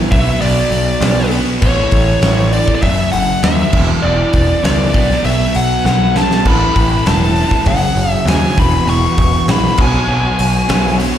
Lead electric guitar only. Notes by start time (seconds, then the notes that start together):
0.11 E5
0.42 D5
1.62 C#5
2.53 D5
2.75 D5
2.82 E5
3.12 F#5
3.44 E5
4.03 D5
4.65 D5
5.26 E5
5.56 F#5
5.86 F#5
6.17 A5
6.47 B5
7.07 A5
7.68 F#5
8.11 E5
8.29 G#5
8.59 B5
8.89 C#6
9.51 B5
9.81 G#5